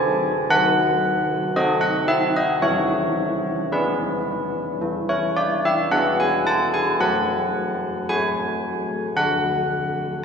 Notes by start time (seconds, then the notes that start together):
Already playing: C4 A4 G#5
0.50 D#3 F#5
1.56 C4 A4 D#5
1.81 F#5
2.08 E5
2.36 D#5
2.62 E3 C#5
3.72 B3 G#4 B4
4.81 E3
5.09 C#5
5.37 D5
5.65 E5
5.91 B3 G#4 F#5
6.20 G#5
6.47 A5
6.74 G#5
7.00 F#3 F#5
8.09 A3 F#4 G#5
9.16 D3 F#5